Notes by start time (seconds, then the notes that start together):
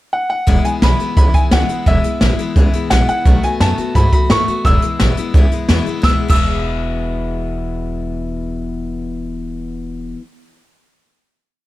0.13 F#5
0.30 F#5
0.47 E1 E2 B2 E3 G#3 B3 E4, kick, closed hi-hat
0.65 E3 G#3 B3 E4 G#5, closed hi-hat
0.82 B1 E2 B2 E3 G#3 B3 E4 B5, snare, closed hi-hat
0.99 E3 G#3 B3 E4, muted upright bass stroke, closed hi-hat
1.17 C#2 E3 G#3 B3 E4 B5, kick, closed hi-hat
1.34 E3 G#3 B3 E4 G#5, kick, closed hi-hat
1.51 C#2 E2 B2 E3 G#3 B3 E4 F#5, snare, closed hi-hat
1.69 E3 G#3 B3 E4, closed hi-hat
1.86 E1 E2 B2 E3 G#3 B3 E4 E5, kick, closed hi-hat
2.03 E3 G#3 B3 E4, muted upright bass stroke, closed hi-hat
2.21 A1 E2 B2 E3 G#3 B3 E4, snare, closed hi-hat
2.38 E3 G#3 B3 E4, muted upright bass stroke, closed hi-hat
2.56 C#2 E3 G#3 B3 E4, kick, closed hi-hat
2.73 E3 G#3 B3 E4, muted upright bass stroke, closed hi-hat
2.90 A#1 E2 B2 E3 G#3 B3 E4 F#5, snare, closed hi-hat
3.08 E3 G#3 B3 E4 F#5, closed hi-hat
3.25 B1 B2 D#3 A3 B3 F#4, kick, closed hi-hat
3.43 A3 B3 F#4 G#5, muted upright bass stroke, closed hi-hat
3.60 F#2 B2 D#3 A3 B3 F#4 A5, snare, closed hi-hat
3.78 A3 B3 F#4, muted upright bass stroke, closed hi-hat
3.95 G#2 D#3 A3 B3 F#4 B5, kick, closed hi-hat
4.12 A3 B3 F#4 B5, muted upright bass stroke, kick, closed hi-hat
4.30 A2 B2 D#3 A3 B3 F#4 C#6, snare, closed hi-hat
4.48 A3 B3 F#4, muted upright bass stroke, closed hi-hat
4.65 E1 E2 B2 E3 G#3 B3 E4 E6, kick, closed hi-hat
4.82 E3 G#3 B3 E4, muted upright bass stroke, closed hi-hat
5.00 A1 E2 B2 E3 G#3 B3 E4, snare, closed hi-hat
5.17 E3 G#3 B3 E4, muted upright bass stroke, closed hi-hat
5.34 C#2 E3 G#3 B3 E4, kick, closed hi-hat
5.52 E3 G#3 B3 E4, closed hi-hat
5.69 E2 B2 E3 G#3 B3 E4, snare, closed hi-hat
5.86 E3 G#3 B3 E4, muted upright bass stroke, closed hi-hat
6.02 E1 E2 B2 E3 E6, kick, snare
6.07 G#3 B3 E4
6.28 E1 E2 B2 E3 E6, kick, crash
6.33 G#3 B3 E4